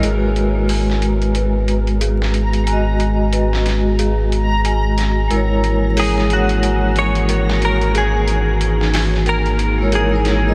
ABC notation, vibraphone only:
X:1
M:4/4
L:1/16
Q:"Swing 16ths" 1/4=91
K:G#m
V:1 name="Vibraphone"
[G,FB]16 | [G,Fd]16 | [G,EAc]16 | z8 z3 [G,EAc]2 [G,EAc]2 [G,EAd] |]